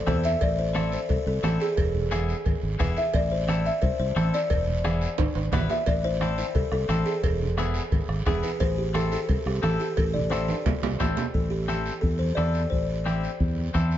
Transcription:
0.07 fingered electric bass E2, clean electric guitar C4 E4 A4, kalimba A4 C5, bombo low, bombo rim, high conga, low conga, low timbale, short guiro
0.24 kalimba E5, short guiro
0.41 fingered electric bass A1, kalimba D5, bombo low, cowbell, long guiro
0.59 kalimba C5
0.74 clean electric guitar C4 E4 A4, bombo rim, high conga, short guiro
0.92 kalimba C5, short guiro
1.09 fingered electric bass C2, kalimba A4, bombo low, cowbell, high conga, long guiro
1.26 fingered electric bass C2, kalimba A4
1.43 fingered electric bass A1, clean electric guitar C4 E4 A4, bombo rim, high conga, low timbale, short guiro
1.60 kalimba G#4, short guiro
1.77 fingered electric bass E1, bombo low, cowbell, long guiro
1.95 low conga
2.11 clean electric guitar B3 E4 G#4, bombo rim, high conga, short guiro
2.29 short guiro
2.45 fingered electric bass G#1, bombo low, cowbell, high conga, long guiro
2.63 fingered electric bass G#1
2.79 fingered electric bass E1, clean electric guitar B3 E4 G#4, kalimba B4, bombo low, bombo rim, high conga, low conga, short guiro
2.96 kalimba E5, short guiro
3.14 fingered electric bass A1, kalimba D5, bombo low, cowbell, long guiro
3.31 kalimba C5
3.48 clean electric guitar C4 E4 A4, bombo rim, high conga, short guiro
3.65 kalimba E5, short guiro
3.82 fingered electric bass C2, kalimba C5, bombo low, cowbell, long guiro
3.99 fingered electric bass C2, kalimba C5
4.16 fingered electric bass A1, clean electric guitar C4 E4 A4, bombo rim, high conga, short guiro
4.34 kalimba D5, short guiro
4.50 fingered electric bass E1, bombo low, cowbell, high conga, long guiro
4.67 low conga
4.84 clean electric guitar B3 E4 G#4, bombo rim, high conga, short guiro
5.01 short guiro
5.18 fingered electric bass G#1, bombo low, cowbell, high timbale, long guiro
5.35 fingered electric bass G#1, high timbale
5.52 fingered electric bass G#1, clean electric guitar B3 E4 B4, kalimba B4, bombo low, bombo rim, high conga, low conga, low timbale, short guiro
5.69 kalimba E5, low timbale, short guiro
5.86 fingered electric bass A1, kalimba D5, bombo low, cowbell, long guiro
6.04 kalimba C5
6.21 clean electric guitar C4 E4 A4, bombo rim, high conga, short guiro
6.38 kalimba C5, short guiro
6.55 fingered electric bass C2, kalimba A4, bombo low, cowbell, long guiro
6.72 fingered electric bass C2, kalimba A4, bombo rim
6.88 fingered electric bass A1, clean electric guitar C4 E4 A4, bombo rim, high conga, short guiro
7.06 kalimba G#4, short guiro
7.23 fingered electric bass E1, bombo low, cowbell, long guiro
7.41 low conga
7.58 clean electric guitar B3 E4 G#4, bombo rim, high conga, short guiro
7.74 short guiro
7.92 fingered electric bass G#1, bombo low, cowbell, high conga, long guiro
8.08 fingered electric bass G#1, bombo rim
8.26 fingered electric bass E1, clean electric guitar B3 E4 G#4, kalimba G#4, bombo low, bombo rim, high conga, low conga, short guiro
8.43 kalimba B4, short guiro
8.60 fingered electric bass A1, kalimba C5, bombo low, cowbell, long guiro
8.78 kalimba G4
8.94 clean electric guitar C4 E4 A4, kalimba A4, bombo rim, high conga, short guiro
9.12 kalimba A4, short guiro
9.29 fingered electric bass C2, bombo low, cowbell, long guiro
9.46 fingered electric bass C2, kalimba G4, bombo rim
9.63 fingered electric bass A1, clean electric guitar C4 E4 A4, kalimba A4, bombo rim, high conga, short guiro
9.79 kalimba G4, short guiro
9.97 fingered electric bass A1, kalimba A4, bombo low, cowbell, long guiro
10.13 kalimba D5, low conga
10.30 clean electric guitar C4 E4 A4, kalimba C5, bombo rim, high conga, short guiro
10.48 high conga, high timbale, short guiro
10.66 fingered electric bass C2, bombo low, cowbell, low timbale, long guiro
10.82 fingered electric bass C2, bombo rim, low conga, low timbale
11.00 fingered electric bass A1, clean electric guitar C4 E4 A4, bombo low, bombo rim, low timbale, short guiro
11.17 low conga, low timbale, short guiro
11.34 fingered electric bass A1, kalimba A4, bombo low, long guiro
11.50 kalimba G4
11.68 clean electric guitar C4 E4 A4, bombo rim, high conga, short guiro
11.86 short guiro
12.01 fingered electric bass E2, kalimba A4, bombo low, long guiro
12.19 kalimba C5, high conga
12.35 fingered electric bass E2, clean electric guitar C4 E4 A4, kalimba D5, bombo rim, high conga, short guiro
12.54 short guiro
12.70 fingered electric bass A1, kalimba C5, bombo low, long guiro
13.06 clean electric guitar C4 E4 G4, bombo rim, high conga, short guiro
13.23 short guiro
13.40 fingered electric bass E2, bombo low, long guiro
13.57 high conga
13.74 fingered electric bass E2, clean electric guitar C4 E4 A4, bombo low, bombo rim, high conga, short guiro
13.91 short guiro

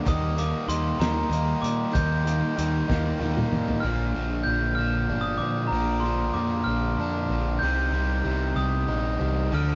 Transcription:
0.05 picked electric bass D#2, overdriven electric guitar D#3 G3 A#3 D#4, glockenspiel D#6, kick, closed hi-hat
0.37 overdriven electric guitar G3 A#3 D#4, glockenspiel D6, closed hi-hat
0.68 picked electric bass D#2, overdriven electric guitar D#3 G3 A#3 D#4, glockenspiel C6, closed hi-hat
0.99 picked electric bass D#2, overdriven electric guitar D#3 G3 A#3 D#4, glockenspiel A#5, snare, closed hi-hat
1.29 picked electric bass D#2, overdriven electric guitar D#3 G3 A#3 D#4, closed hi-hat
1.62 picked electric bass A#2, glockenspiel D6, closed hi-hat
1.92 picked electric bass D#2, overdriven electric guitar D#3 G3 A#3 D#4, glockenspiel G6, kick, closed hi-hat
2.25 overdriven electric guitar G3 A#3 D#4, closed hi-hat
2.56 picked electric bass D#2, overdriven electric guitar D#3 G3 A#3 D#4, closed hi-hat
2.88 picked electric bass D#2, overdriven electric guitar D#3 G3 A#3 D#4, kick, snare
3.20 picked electric bass D#2, overdriven electric guitar D#3 G3 A#3 D#4, high tom
3.37 mid tom
3.52 picked electric bass A#2, mid tom
3.68 floor tom
3.80 picked electric bass A#1, overdriven electric guitar A#2 D3, glockenspiel F6
3.84 overdriven electric guitar F3 A#3 D4
4.15 picked electric bass A#1, overdriven electric guitar F3
4.43 picked electric bass A#1, overdriven electric guitar A#2, glockenspiel G6
4.75 picked electric bass A#1, overdriven electric guitar F3, glockenspiel F6
5.08 picked electric bass G1, overdriven electric guitar D4
5.21 glockenspiel D#6
5.38 picked electric bass A#2, overdriven electric guitar F3, glockenspiel D6
5.67 glockenspiel A#5
5.71 picked electric bass A#1, overdriven electric guitar A#2 D3 F3 A#3 D4
6.00 overdriven electric guitar F3, glockenspiel C6
6.34 picked electric bass F2, overdriven electric guitar A#2, glockenspiel D6
6.64 picked electric bass A#1, overdriven electric guitar F3, glockenspiel F6
6.98 picked electric bass F2, overdriven electric guitar D4
7.30 picked electric bass A#1, overdriven electric guitar F3
7.59 picked electric bass C2, glockenspiel G6
7.63 overdriven electric guitar C3 G3 C4 D#4
7.92 picked electric bass C2, overdriven electric guitar G3
8.24 picked electric bass C2, overdriven electric guitar C3
8.56 picked electric bass C2, overdriven electric guitar G3, glockenspiel D#6
8.88 picked electric bass A#1, overdriven electric guitar D#4
9.20 picked electric bass C2, overdriven electric guitar G3
9.52 picked electric bass D2, overdriven electric guitar D3 F3 A3 D4, glockenspiel F6

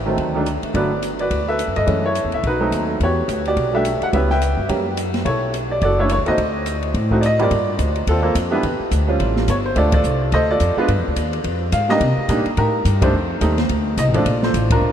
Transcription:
Already playing: upright bass A1
0.06 upright piano D#3 F#3 A3 C4
0.18 upright bass D2, kick, ride
0.35 upright piano D#3 F#3 A3 D4
0.46 hi-hat pedal, ride
0.63 muted upright bass stroke, ride
0.74 upright bass G1, upright piano D3 F#3 A3 B3 F#4 B4 D5, kick, ride
1.02 hi-hat pedal, ride
1.19 upright piano F#4 B4 D5, ride
1.31 upright bass D2, kick, ride
1.48 upright piano A4 B4 E5
1.59 hi-hat pedal, ride
1.68 upright bass F#2
1.76 upright bass G2, upright piano A4 D#5, ride
1.86 upright bass F#2, upright piano E3 G#3 A3 C#4, kick, ride
2.06 upright piano E4 A4 C#5
2.15 hi-hat pedal, ride
2.25 upright bass E2
2.32 upright bass C#2, upright piano E5, ride
2.44 upright bass B1, upright piano D#4 F#4 B4, kick, ride
2.60 upright piano F#3 A3 C4 D#4
2.71 upright bass D#2, hi-hat pedal, ride
3.00 upright bass E2, upright piano F#4 G4 C#5, kick, ride
3.28 upright bass D2, hi-hat pedal, ride
3.45 upright piano F#4 G4 D5, ride
3.57 upright bass B1, kick, ride
3.73 upright piano G3 A3 D4 F#4 G4 A4 E5
3.85 hi-hat pedal, ride
4.01 upright piano F#5, muted upright bass stroke, ride
4.13 upright bass C#2, upright piano G3 B3 C#4 E4 G4 B4 E5, kick, ride
4.30 upright piano B4 E5 G5, snare
4.42 hi-hat pedal, ride
4.57 upright bass G2
4.68 upright bass F#2, upright piano G3 A#3 C#4 G4, kick, ride
4.97 hi-hat pedal, ride
5.14 snare, ride
5.25 upright bass B1, upright piano E4 A4 C#5, kick, ride
5.54 hi-hat pedal, ride
5.71 upright piano D5
5.81 upright bass F#1, upright piano F#4 A4 D5, kick, ride
5.98 upright piano A3 C#4 D4 E4 C#5
6.09 upright piano C#5, hi-hat pedal, ride
6.18 upright bass C#2
6.26 upright bass D#2, upright piano A3 C4 D#4 F#4 D#5, ride
6.30 upright piano C5
6.38 upright bass D2, kick, ride
6.66 hi-hat pedal, ride
6.83 ride
6.94 upright bass A2, kick, ride
7.11 upright piano A3 C4 D#4 F#4, kick
7.21 upright piano D5, hi-hat pedal, ride
7.26 upright piano D#5
7.39 upright piano G2 A#3 C4 F4 G4 D5, ride
7.43 upright piano F4 A#4
7.51 upright bass G2, kick, ride
7.79 upright bass D2, kick, hi-hat pedal, ride
7.96 ride
8.07 upright bass D#2, upright piano C4 F4 A4, kick, ride
8.23 upright piano A#3 C4 F4 A4
8.35 upright bass F2, kick, hi-hat pedal, ride
8.51 upright piano G3 B3 D4 E4 B4
8.55 upright piano G4
8.63 upright bass E2, kick, ride
8.79 muted upright bass stroke
8.91 upright bass D2, kick, hi-hat pedal, ride
9.07 upright piano G3 C4 C#4 F4
9.20 upright bass A1, kick, ride
9.36 snare
9.48 upright bass G1, upright piano C#5, kick, hi-hat pedal, ride
9.65 upright piano C5
9.76 upright bass D2, upright piano A3 C4 D4 F4 A4 D5, kick, ride
9.92 upright piano F4 A4 D5, kick, ride
10.04 upright bass C2, hi-hat pedal
10.32 upright bass D2, upright piano A4 C5 D#5, kick, ride
10.51 upright piano F4 A4 D5
10.60 upright bass F2, kick, hi-hat pedal, ride
10.77 upright piano G#3 B3 D4 F4 B4, muted upright bass stroke
10.88 upright bass G2, kick, ride
10.98 upright bass F2
11.08 upright bass D2
11.16 upright bass D#2, kick, hi-hat pedal, ride
11.33 ride
11.44 upright bass F2, kick, ride
11.72 upright bass G#2, upright piano F5, kick, hi-hat pedal, ride
11.89 upright piano G3 A#3 D4 D#4 G4 A#4 D#5, snare
12.01 upright bass C3, kick, ride
12.17 muted upright bass stroke
12.28 upright bass A#2, upright piano G3 A#3 D4 D#4, kick, hi-hat pedal, ride
12.46 muted upright bass stroke, ride
12.57 upright bass A2, upright piano D#4 G4 A#4, kick, ride
12.85 upright bass G2, kick, hi-hat pedal, ride
13.01 upright piano G3 A3 C4 D4 D#4 A4 C5, kick, ride
13.13 upright bass F2
13.41 upright bass D#2, upright piano G3 A3 C4 D#4, kick, hi-hat pedal, ride
13.58 snare, ride
13.69 upright bass D2, kick, ride
13.97 upright bass C2, upright piano D#5, kick, hi-hat pedal, ride
14.08 upright bass A1
14.14 upright bass F1, upright piano F3 A3 C4 D4 D5, ride
14.18 upright piano F4 A4
14.26 upright bass A#1, kick, ride
14.43 upright piano F4 A4 C5, snare
14.54 upright bass A1, kick, hi-hat pedal, ride
14.70 upright piano D4 F4 A#4, kick, ride
14.81 upright bass A#1

